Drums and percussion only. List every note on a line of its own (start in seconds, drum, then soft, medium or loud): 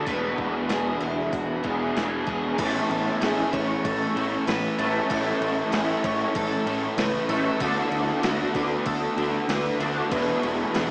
0.06 kick loud
0.06 open hi-hat medium
0.38 kick medium
0.69 snare loud
0.69 open hi-hat medium
1.33 kick loud
1.33 open hi-hat medium
1.65 kick medium
1.97 snare loud
1.97 open hi-hat medium
2.28 kick medium
2.59 kick loud
2.59 crash loud
2.59 crash medium
2.91 crash medium
3.07 snare soft
3.22 snare loud
3.22 crash medium
3.53 kick medium
3.53 crash medium
3.85 kick loud
3.85 crash medium
4.17 crash medium
4.48 snare loud
4.48 crash medium
4.79 crash medium
5.11 kick loud
5.11 crash medium
5.42 crash medium
5.73 snare loud
5.73 crash medium
6.04 kick medium
6.04 crash medium
6.35 kick loud
6.35 crash medium
6.67 crash medium
6.98 snare loud
6.98 crash medium
7.29 crash medium
7.60 kick loud
7.60 crash medium
7.92 crash medium
8.08 snare soft
8.23 snare loud
8.23 crash medium
8.55 kick medium
8.55 crash medium
8.86 kick loud
8.86 crash medium
9.18 crash medium
9.49 snare loud
9.49 crash medium
9.80 crash medium
10.11 kick loud
10.11 crash medium
10.43 crash medium
10.60 snare soft
10.75 snare loud
10.75 crash medium